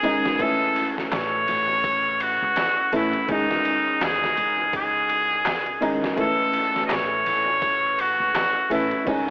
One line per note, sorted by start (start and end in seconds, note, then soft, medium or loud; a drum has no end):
0.00 0.36 D#3 medium
0.00 0.36 G#3 medium
0.00 0.43 G#4 loud
0.00 ride medium
0.04 0.36 C#4 medium
0.04 0.36 D#4 medium
0.26 snare medium
0.38 2.88 E3 medium
0.38 2.89 A3 medium
0.38 2.89 C#4 medium
0.38 kick loud
0.38 ride medium
0.42 2.90 E4 medium
0.42 0.87 A4 loud
0.76 ride medium
0.98 snare soft
1.12 1.45 A1 medium
1.12 2.23 C#5 loud
1.12 snare loud
1.12 ride medium
1.12 darbuka tek medium
1.48 2.38 A1 medium
1.48 ride medium
1.84 kick medium
1.84 ride medium
2.20 2.93 F#4 loud
2.20 ride medium
2.42 2.55 C#2 medium
2.56 snare loud
2.56 ride medium
2.56 darbuka tek medium
2.92 3.11 A1 medium
2.92 3.25 E3 medium
2.92 3.25 A3 medium
2.92 3.25 C#4 medium
2.92 3.26 E4 medium
2.92 3.32 E4 medium
2.92 ride medium
3.13 ride soft
3.27 3.47 C#2 medium
3.27 5.77 D#3 medium
3.27 5.78 G#3 medium
3.27 5.79 C#4 medium
3.27 4.06 D#4 loud
3.27 5.79 D#4 medium
3.27 kick loud
3.27 ride medium
3.51 snare soft
3.65 ride medium
4.01 4.34 D#2 medium
4.01 4.75 G#4 loud
4.01 snare loud
4.01 ride medium
4.01 darbuka tek medium
4.24 snare soft
4.37 5.79 C#2 medium
4.37 ride medium
4.73 5.90 G#4 loud
4.73 kick medium
4.73 ride medium
5.09 ride medium
5.45 snare loud
5.45 ride medium
5.45 darbuka tek medium
5.66 ride soft
5.81 6.14 D#3 medium
5.81 6.14 G#3 medium
5.81 6.14 C#4 medium
5.81 6.14 D#4 medium
5.81 ride medium
6.04 snare medium
6.16 8.66 E3 medium
6.16 8.67 A3 medium
6.16 8.67 C#4 medium
6.16 8.68 E4 medium
6.16 kick loud
6.16 ride medium
6.20 6.81 A4 loud
6.53 ride medium
6.76 snare soft
6.86 6.94 D#5 medium
6.86 ride medium
6.86 darbuka tek medium
6.91 7.23 A1 medium
6.91 8.02 C#5 loud
6.91 snare loud
7.26 8.16 A1 medium
7.26 ride medium
7.62 kick loud
7.62 ride medium
7.99 8.72 F#4 medium
7.99 ride medium
8.20 8.33 C#2 medium
8.35 snare loud
8.35 ride medium
8.35 darbuka tek medium
8.70 8.90 A1 medium
8.70 9.03 E3 medium
8.70 9.03 A3 medium
8.70 9.03 C#4 medium
8.70 9.04 E4 medium
8.70 9.06 E4 medium
8.70 ride medium
8.91 ride soft
9.05 9.25 C#2 medium
9.05 9.30 D#3 medium
9.05 9.30 G#3 medium
9.05 9.30 C#4 medium
9.05 kick loud
9.05 ride medium
9.09 9.30 D#4 medium